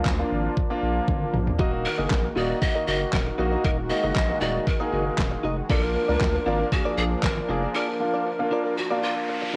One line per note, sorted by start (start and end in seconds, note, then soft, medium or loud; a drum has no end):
0.00 1.55 F3 medium
0.00 3.60 A#3 medium
0.00 1.55 D4 medium
0.05 0.23 D2 medium
0.05 kick loud
0.05 snare medium
0.05 clap loud
0.19 0.56 A#3 medium
0.19 0.56 D4 medium
0.19 0.56 F4 loud
0.31 0.49 G#1 medium
0.57 kick loud
0.70 1.35 A#3 loud
0.70 1.35 D4 medium
0.70 1.35 F4 loud
0.82 1.00 A#1 loud
1.08 1.26 G#1 loud
1.08 kick loud
1.08 high tom medium
1.34 1.51 A#1 medium
1.34 mid tom medium
1.47 floor tom medium
1.59 1.87 D#1 loud
1.59 5.66 D#3 medium
1.59 1.87 A#3 medium
1.59 1.74 D#4 medium
1.59 1.87 D#4 medium
1.59 1.88 F#4 loud
1.59 1.73 F#4 medium
1.59 5.66 F#4 medium
1.59 1.72 A#4 medium
1.59 1.71 D#5 medium
1.59 kick loud
1.73 muted clean electric guitar stroke medium
1.85 2.33 A#4 medium
1.85 muted clean electric guitar stroke soft
1.98 2.07 F#1 medium
1.98 2.26 A#3 medium
1.98 2.26 D#4 medium
1.98 2.09 D#4 medium
1.98 2.09 F#4 medium
1.98 2.26 G#4 medium
1.98 2.09 A#4 medium
1.98 2.09 D#5 medium
2.11 2.28 A#1 medium
2.11 kick loud
2.11 snare medium
2.11 clap loud
2.24 muted clean electric guitar stroke soft
2.36 2.54 D#1 loud
2.36 2.55 A#3 medium
2.36 2.50 D#4 medium
2.36 2.55 D#4 medium
2.36 2.49 F#4 medium
2.36 2.55 F#4 medium
2.36 2.49 A#4 medium
2.36 2.63 D5 loud
2.36 2.48 D#5 medium
2.49 2.60 D#4 soft
2.49 2.60 F#4 medium
2.49 2.60 A#4 medium
2.49 2.60 D#5 medium
2.61 3.18 A#3 medium
2.61 3.18 D#4 medium
2.61 3.18 F#4 medium
2.61 2.87 D#5 loud
2.61 muted clean electric guitar stroke soft
2.61 kick loud
2.75 2.86 D#4 medium
2.75 2.86 F#4 medium
2.75 2.87 A#4 medium
2.75 2.87 D#5 medium
2.87 3.05 F#1 medium
2.87 2.99 D#4 medium
2.87 2.99 F#4 medium
2.87 2.99 A#4 medium
2.87 3.15 D#5 loud
2.87 3.00 D#5 medium
3.01 muted clean electric guitar stroke soft
3.13 3.31 D#1 loud
3.13 3.52 A#4 medium
3.13 muted clean electric guitar stroke soft
3.13 kick loud
3.13 snare medium
3.13 clap loud
3.26 muted clean electric guitar stroke soft
3.38 3.56 A#1 medium
3.38 3.77 A#3 medium
3.38 3.52 D#4 medium
3.38 3.77 D#4 medium
3.38 3.77 F#4 medium
3.38 3.52 F#4 medium
3.38 3.51 A#4 medium
3.38 3.51 D#5 medium
3.52 3.63 D#4 medium
3.52 3.63 F#4 medium
3.52 3.63 A#4 medium
3.52 3.62 D#5 medium
3.64 3.92 D#1 loud
3.64 5.67 G#3 medium
3.64 3.79 D#4 medium
3.64 3.78 F#4 medium
3.64 3.70 A#4 medium
3.64 3.77 A#4 medium
3.64 3.77 D#5 medium
3.64 kick loud
3.78 muted clean electric guitar stroke medium
3.90 4.18 A#3 medium
3.90 4.18 D#4 medium
3.90 4.18 F#4 medium
3.90 4.42 D#5 loud
3.90 muted clean electric guitar stroke soft
4.03 4.12 F#1 medium
4.03 4.14 D#4 medium
4.03 4.14 F#4 medium
4.03 4.14 A#4 medium
4.03 4.14 D#5 medium
4.15 4.33 A#1 medium
4.15 muted clean electric guitar stroke soft
4.15 kick loud
4.15 snare medium
4.15 clap loud
4.29 4.66 A#3 medium
4.29 4.66 D#4 medium
4.29 4.66 F#4 medium
4.29 muted clean electric guitar stroke soft
4.41 4.59 D#1 medium
4.41 4.55 D#4 medium
4.41 4.54 F#4 medium
4.41 4.54 A#4 medium
4.41 4.68 D5 loud
4.41 4.53 D#5 medium
4.54 4.65 D#4 medium
4.54 4.65 F#4 medium
4.54 4.65 A#4 medium
4.54 4.65 D#5 medium
4.67 5.44 A#4 medium
4.67 muted clean electric guitar stroke soft
4.67 kick loud
4.80 5.45 A#3 medium
4.80 5.45 D#4 medium
4.80 4.91 D#4 medium
4.80 4.92 F#4 medium
4.80 5.45 G#4 medium
4.80 4.92 A#4 medium
4.80 4.93 D#5 medium
4.92 5.10 F#1 medium
4.92 5.04 D#4 medium
4.92 5.04 F#4 medium
4.92 5.04 A#4 medium
4.92 5.05 D#5 medium
5.06 muted clean electric guitar stroke soft
5.18 5.36 D#1 loud
5.18 muted clean electric guitar stroke soft
5.18 kick loud
5.18 snare loud
5.18 clap loud
5.32 muted clean electric guitar stroke soft
5.43 5.62 F1 medium
5.43 5.58 D#4 medium
5.43 5.57 F#4 medium
5.43 5.57 A#4 medium
5.43 5.56 D#5 loud
5.57 muted clean electric guitar stroke soft
5.69 5.97 A#1 loud
5.69 9.56 F3 medium
5.69 5.98 A#3 medium
5.69 9.56 A#3 medium
5.69 5.84 D4 medium
5.69 9.56 D4 medium
5.69 5.98 D4 medium
5.69 5.98 F4 medium
5.69 5.83 F4 medium
5.69 5.83 A4 loud
5.69 5.83 A#4 medium
5.69 5.82 D5 medium
5.69 kick loud
5.83 6.68 A#4 loud
5.83 muted clean electric guitar stroke medium
5.95 muted clean electric guitar stroke soft
6.08 6.17 C#2 medium
6.08 6.37 A#3 medium
6.08 6.37 D4 medium
6.08 6.20 D4 medium
6.08 6.37 F4 medium
6.08 6.19 F4 medium
6.08 6.19 A#4 medium
6.08 6.19 D5 medium
6.21 6.38 D2 loud
6.21 muted clean electric guitar stroke soft
6.21 kick loud
6.21 snare medium
6.21 clap loud
6.34 muted clean electric guitar stroke soft
6.46 6.64 G#1 medium
6.46 6.65 A#3 medium
6.46 6.60 D4 medium
6.46 6.66 D4 medium
6.46 6.66 F4 loud
6.46 6.60 F4 medium
6.46 6.59 A#4 medium
6.46 6.59 D5 loud
6.60 6.71 D4 soft
6.60 6.71 F4 medium
6.60 6.70 A#4 medium
6.60 6.70 D5 medium
6.72 7.28 A#3 medium
6.72 7.28 D4 medium
6.72 6.96 F#4 medium
6.72 7.29 G#4 medium
6.72 muted clean electric guitar stroke soft
6.72 kick loud
6.85 6.96 D4 medium
6.85 6.97 F4 medium
6.85 6.98 A#4 medium
6.85 6.98 D5 medium
6.97 7.15 A#1 medium
6.97 7.09 D4 medium
6.97 7.09 F4 medium
6.97 7.03 G#4 medium
6.97 7.10 A#4 medium
6.97 7.10 D5 medium
7.11 muted clean electric guitar stroke soft
7.23 7.41 G#1 medium
7.23 7.60 A#4 loud
7.23 muted clean electric guitar stroke soft
7.23 kick loud
7.23 snare loud
7.23 clap loud
7.37 muted clean electric guitar stroke soft
7.49 7.67 F1 medium
7.49 7.87 A#3 medium
7.49 7.63 D4 medium
7.49 7.87 D4 medium
7.49 7.62 F4 medium
7.49 7.87 G#4 medium
7.49 7.62 A#4 medium
7.49 7.61 D5 medium
7.62 7.73 D4 medium
7.62 7.73 F4 medium
7.62 7.73 A#4 medium
7.62 7.73 D5 medium
7.74 7.89 D4 medium
7.74 7.88 F4 medium
7.74 8.79 A#4 loud
7.74 7.88 A#4 medium
7.74 7.87 D5 medium
7.74 riser medium
7.88 muted clean electric guitar stroke soft
8.00 8.28 A#3 medium
8.00 8.28 D4 medium
8.00 8.29 F4 medium
8.00 muted clean electric guitar stroke soft
8.13 8.25 D4 medium
8.13 8.24 F4 medium
8.13 8.24 A#4 medium
8.13 8.24 D5 medium
8.26 muted clean electric guitar stroke soft
8.39 8.76 A#3 medium
8.39 8.76 D4 medium
8.39 8.76 F4 medium
8.39 muted clean electric guitar stroke medium
8.51 8.65 D4 medium
8.51 8.65 F4 medium
8.51 8.64 A#4 medium
8.51 8.63 D5 medium
8.65 8.76 D4 medium
8.65 8.76 F4 medium
8.65 8.75 A#4 medium
8.65 8.75 D5 medium
8.77 9.04 F#4 medium
8.77 muted clean electric guitar stroke soft
8.90 9.55 A#3 medium
8.90 9.56 D4 medium
8.90 9.01 D4 medium
8.90 9.56 F4 medium
8.90 9.02 F4 medium
8.90 9.02 A#4 medium
8.90 9.03 D5 medium
9.02 9.14 D4 medium
9.02 9.54 F4 medium
9.02 9.14 F4 medium
9.02 9.15 A#4 medium
9.02 9.15 D5 medium
9.16 muted clean electric guitar stroke soft
9.28 muted clean electric guitar stroke soft
9.42 muted clean electric guitar stroke soft